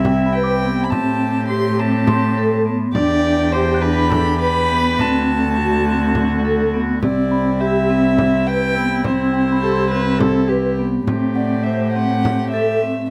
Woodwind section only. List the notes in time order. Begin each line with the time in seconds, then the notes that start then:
Already playing: C3 C4 E4
0.91 G4
2.93 E3 D4 G4
4.98 D3 C4 F#4
7.01 C3 C4 E4
9.05 C3
11.07 C3 A3 G4